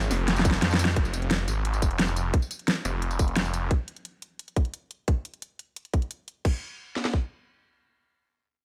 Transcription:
0.02 tambourine
0.11 detuned saw bass F1, snare, open hi-hat, tambourine
0.28 snare, closed hi-hat
0.36 snare, closed hi-hat, tambourine
0.45 kick, closed hi-hat, tambourine
0.51 snare, closed hi-hat
0.62 detuned saw bass F2, snare, closed hi-hat
0.71 snare, tambourine
0.79 open hi-hat, tambourine
0.85 snare
0.96 detuned saw bass F1, kick, closed hi-hat
1.05 tambourine
1.14 closed hi-hat, tambourine
1.22 closed hi-hat
1.31 snare, closed hi-hat
1.48 detuned saw bass G#1, closed hi-hat, tambourine
1.65 closed hi-hat
1.74 closed hi-hat, tambourine
1.82 detuned saw bass F1, kick, closed hi-hat, tambourine
1.91 closed hi-hat
1.99 snare, closed hi-hat
2.08 tambourine
2.16 closed hi-hat, tambourine
2.34 kick, closed hi-hat
2.42 tambourine
2.51 closed hi-hat, tambourine
2.59 closed hi-hat
2.68 snare, closed hi-hat
2.85 detuned saw bass F1, closed hi-hat, tambourine
3.02 closed hi-hat
3.11 closed hi-hat, tambourine
3.19 kick, closed hi-hat, tambourine
3.28 closed hi-hat
3.36 detuned saw bass F1, snare, closed hi-hat
3.45 tambourine
3.54 closed hi-hat, tambourine
3.71 kick, closed hi-hat
3.88 closed hi-hat
3.96 closed hi-hat
4.05 closed hi-hat
4.22 closed hi-hat
4.39 closed hi-hat
4.48 closed hi-hat
4.56 kick, closed hi-hat
4.65 closed hi-hat
4.74 closed hi-hat
4.91 closed hi-hat
5.08 kick, closed hi-hat
5.25 closed hi-hat
5.34 closed hi-hat
5.42 closed hi-hat
5.59 closed hi-hat
5.76 closed hi-hat
5.85 closed hi-hat
5.94 kick, closed hi-hat
6.02 closed hi-hat
6.11 closed hi-hat
6.28 closed hi-hat
6.45 kick, crash
6.96 snare
7.05 snare
7.13 kick

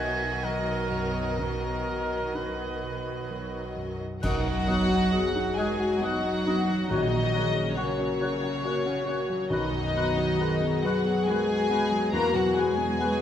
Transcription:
Already playing: grand piano B1 F#3 D#4, double bass section B1, cello section B2, viola section D#3 F#3, violin section F#4 D#5 E5
0.00 grand piano F#4, cor anglais G#5
0.43 grand piano F#3, cor anglais A#4, violin section D#5
0.90 grand piano F#2, violin section C#5
1.38 grand piano B1, cor anglais A#4, violin section D#5
1.86 grand piano F#3
2.34 grand piano D#4, cor anglais B4
2.82 grand piano F#4
3.30 grand piano F#3
3.76 grand piano F#2
4.22 grand piano B1, double bass section B1, viola section D#3 F#4, cello section F#3, french horn section D#4, violin section F#4 F#5, clarinet F#4, cor anglais D#5, flute section F#6, concert bass drum, crash
4.45 grand piano F#2, viola section F#3
4.67 grand piano F#3, viola section B3, clarinet F#4, cor anglais D#5, flute section F#6
4.90 viola section D#4, grand piano D#4
5.12 viola section B3, grand piano F#4, clarinet F#4, french horn section G#4, cor anglais D#5, flute section F#6
5.34 viola section F#3, grand piano D#4
5.56 viola section D#3, cello section G#3, french horn section F#4, clarinet F#4, violin section G#4 G#5, grand piano D#5, cor anglais D#5, flute section F#6
5.79 viola section F#3, grand piano F#4
6.01 cello section F#3, viola section B3, french horn section D#4, violin section F#4 F#5, clarinet F#4, grand piano D#5, cor anglais D#5, flute section F#6
6.24 viola section D#4, grand piano F#4
6.46 viola section B3, grand piano D#4, clarinet F#4, cor anglais D#5, flute section F#6
6.67 viola section F#3, grand piano F#3
6.88 double bass section A#1, grand piano A#1, viola section C#3, cello section D#3, violin section D#4 D#5, french horn section F#4, clarinet F#4, cor anglais C#5, flute section F#6
7.12 grand piano A#2, viola section F#3
7.32 grand piano F#3, viola section A#3, clarinet F#4, french horn section G#4, cor anglais C#5, flute section F#6
7.54 grand piano C#4, viola section C#4
7.76 cello section C#3, viola section A#3, violin section C#4 C#5, clarinet F#4, grand piano F#4, french horn section A#4, cor anglais C#5, flute section F#6
7.98 viola section F#3, grand piano C#4
8.20 viola section C#3, clarinet F#4, grand piano C#5, cor anglais C#5, flute section F#6
8.43 viola section F#3, grand piano F#4
8.64 viola section A#3, clarinet F#4, french horn section F#4, grand piano C#5, cor anglais C#5, flute section F#6
8.86 viola section C#4, grand piano F#4
9.06 viola section A#3, grand piano C#4, clarinet F#4, cor anglais C#5, flute section F#6
9.29 grand piano F#3, viola section F#3
9.50 grand piano B1, double bass section B1, cello section D#3, viola section D#3 F#4, violin section D#4 D#5, french horn section D#4, clarinet F#4, cor anglais B4, flute section F#6
9.72 grand piano F#2, viola section F#3
9.94 grand piano F#3, viola section B3, clarinet F#4, french horn section F#4, cor anglais B4, flute section F#6
10.16 viola section F#3, grand piano B3
10.38 viola section D#3, grand piano F#4, clarinet F#4, french horn section G#4, cor anglais B4, flute section F#6
10.60 viola section F#3, grand piano B3
10.83 cello section F#3, viola section B3, clarinet F#4, violin section F#4 F#5, grand piano B4, cor anglais B4, flute section F#6
11.06 viola section F#3, grand piano F#4
11.26 viola section D#3, cello section G#3, clarinet F#4, violin section G#4 G#5, grand piano B4, cor anglais B4, flute section F#6
11.48 viola section F#3, grand piano F#4
11.69 grand piano B3, viola section B3, clarinet F#4, cor anglais B4, flute section F#6
11.91 grand piano F#3, viola section F#3
12.13 grand piano E2, double bass section E2, viola section E3, cello section A#3, french horn section F#4, clarinet F#4, violin section A#4 A#5, cor anglais B4, flute section F#6
12.34 grand piano B2, cello section F#3, viola section F#3, violin section F#4 F#5
12.55 grand piano F#3, cello section G#3, viola section G#3, violin section G#4 G#5, cor anglais B4, flute section F#6
12.60 clarinet F#4
12.77 grand piano B3, viola section B3
12.99 viola section G#3, grand piano F#4, cor anglais B4, french horn section B4, flute section F#6
13.03 clarinet F#4

